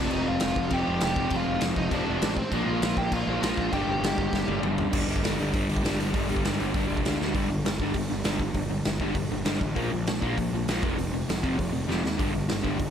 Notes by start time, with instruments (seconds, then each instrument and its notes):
Already playing: overdriven electric guitar F2 C3 F3, lead electric guitar D4
0.00 lead electric guitar D5
0.11 picked electric bass F1, lead electric guitar D#4 D#5, crash
0.27 picked electric bass F1, lead electric guitar F4 F5
0.40 picked electric bass F1, snare, crash
0.56 picked electric bass F1, kick
0.70 picked electric bass F1, overdriven electric guitar F2 C3 F3, lead electric guitar G4 G5, kick, crash
0.85 picked electric bass F1, overdriven electric guitar F2 C3 F3
1.01 picked electric bass F1, lead electric guitar G4 G5, snare, crash
1.16 picked electric bass F1, overdriven electric guitar F2 C3 F3, kick
1.30 picked electric bass F1, kick, crash
1.36 lead electric guitar F4 F5
1.48 picked electric bass F1
1.61 picked electric bass F1, snare, crash
1.76 picked electric bass F1, lead electric guitar D#4 D#5, kick
1.91 picked electric bass F1, overdriven electric guitar F2 C3 F3, lead electric guitar D4 D5, kick, crash
2.06 picked electric bass F1, overdriven electric guitar F2 C3 F3
2.22 picked electric bass A1, snare, crash
2.37 lead electric guitar C4 C5, kick
2.52 picked electric bass A#1, overdriven electric guitar A#2 F3 A#3, lead electric guitar D4 D5, kick, crash
2.66 picked electric bass A#1, lead electric guitar F4 F5
2.82 picked electric bass A#1, snare, crash
2.97 picked electric bass A#1, lead electric guitar G4 G5, kick
3.12 picked electric bass A#1, lead electric guitar F4 F5, kick, crash
3.27 picked electric bass A#1, overdriven electric guitar A#2 F3 A#3
3.42 picked electric bass A#1, overdriven electric guitar A#2 F3 A#3, lead electric guitar F4 F5, snare, crash
3.57 picked electric bass A#1, kick
3.73 picked electric bass G1, overdriven electric guitar G2 D3 G3, lead electric guitar G4 G5, kick, crash
3.87 picked electric bass G1
4.01 picked electric bass G1, snare, crash
4.18 picked electric bass G1, kick
4.33 picked electric bass G1, kick, snare
4.47 picked electric bass G1, overdriven electric guitar G2 D3 G3, high tom
4.61 picked electric bass G1, overdriven electric guitar G2 D3 G3, mid tom
4.78 floor tom
4.92 picked electric bass G1, overdriven electric guitar G2 D3 G3, kick, crash
5.08 picked electric bass G1, overdriven electric guitar G2 D3 G3, open hi-hat
5.16 kick
5.23 picked electric bass G1, overdriven electric guitar G2 D3 G3, snare, open hi-hat
5.39 picked electric bass G1, overdriven electric guitar G2 D3 G3, open hi-hat
5.54 picked electric bass G1, overdriven electric guitar G2 D3 G3, kick, open hi-hat
5.69 picked electric bass G1, overdriven electric guitar G2 D3 G3, open hi-hat
5.77 kick
5.83 picked electric bass G1, overdriven electric guitar G2 D3 G3, snare, open hi-hat
6.00 picked electric bass G1, overdriven electric guitar G2 D3 G3, open hi-hat
6.14 picked electric bass G1, overdriven electric guitar G2 D3 G3, kick, open hi-hat
6.29 picked electric bass G1, overdriven electric guitar G2 D3 G3, open hi-hat
6.37 kick
6.44 picked electric bass G1, overdriven electric guitar G2 D3 G3, snare, open hi-hat
6.59 picked electric bass G1, overdriven electric guitar G2 D3 G3, open hi-hat
6.74 picked electric bass G1, overdriven electric guitar G2 D3 G3, kick, open hi-hat
6.88 picked electric bass F1, overdriven electric guitar G2 D3 G3, open hi-hat
6.97 kick
7.05 picked electric bass D2, overdriven electric guitar G2 D3 G3, snare, open hi-hat
7.20 picked electric bass D2, overdriven electric guitar G2 D3 G3, snare
7.35 picked electric bass G1, overdriven electric guitar G2 D3 G3, kick, open hi-hat
7.50 picked electric bass G1, overdriven electric guitar G2 D3
7.65 picked electric bass G1, overdriven electric guitar G2 D3, snare, open hi-hat
7.79 picked electric bass G1, overdriven electric guitar G2 D3 G3, kick
7.94 picked electric bass G1, overdriven electric guitar G2 D3, kick, open hi-hat
8.10 picked electric bass G1, overdriven electric guitar G2 D3
8.24 picked electric bass G1, overdriven electric guitar G2 D3 G3, snare, open hi-hat
8.39 overdriven electric guitar G2 D3, kick
8.54 picked electric bass G1, overdriven electric guitar G2 D3, kick, open hi-hat
8.70 overdriven electric guitar G2 D3
8.85 picked electric bass G1, overdriven electric guitar G2 D3, snare, open hi-hat
9.00 picked electric bass G1, overdriven electric guitar G2 D3 G3, kick
9.15 picked electric bass G1, overdriven electric guitar G2 D3, kick, open hi-hat
9.31 picked electric bass G1, overdriven electric guitar G2 D3
9.45 picked electric bass G1, overdriven electric guitar G2 D3 G3, snare, open hi-hat
9.60 picked electric bass A1, overdriven electric guitar G2 D3, kick
9.75 picked electric bass A#1, overdriven electric guitar A#2 F3 A#3, kick, open hi-hat
9.91 picked electric bass A#1, overdriven electric guitar A#2 F3
10.07 picked electric bass A#1, overdriven electric guitar A#2 F3, snare, open hi-hat
10.22 picked electric bass A#1, overdriven electric guitar A#2 F3 A#3, kick
10.38 picked electric bass A#1, overdriven electric guitar A#2 F3, kick, open hi-hat
10.53 picked electric bass A#1, overdriven electric guitar A#2 F3
10.68 picked electric bass A#1, overdriven electric guitar A#2 F3 A#3, snare, open hi-hat
10.82 picked electric bass F1, overdriven electric guitar F2 C3 F3, kick
10.98 picked electric bass F1, overdriven electric guitar F2 C3, open hi-hat
11.13 overdriven electric guitar F2 C3
11.28 picked electric bass F1, overdriven electric guitar F2 C3, snare, open hi-hat
11.42 picked electric bass F1, overdriven electric guitar F2 C3 F3, kick
11.58 picked electric bass F1, overdriven electric guitar F2 C3, kick, open hi-hat
11.72 picked electric bass F1, overdriven electric guitar F2 C3
11.88 picked electric bass F1, overdriven electric guitar F2 C3 F3, snare
12.04 picked electric bass D#2, overdriven electric guitar F2 C3, snare
12.18 picked electric bass G1, overdriven electric guitar G2 D3 G3, kick, open hi-hat
12.34 picked electric bass G1, overdriven electric guitar G2 D3
12.49 picked electric bass G1, overdriven electric guitar G2 D3, snare, open hi-hat
12.63 picked electric bass G1, overdriven electric guitar G2 D3 G3, kick
12.78 picked electric bass G1, overdriven electric guitar G2 D3, kick, open hi-hat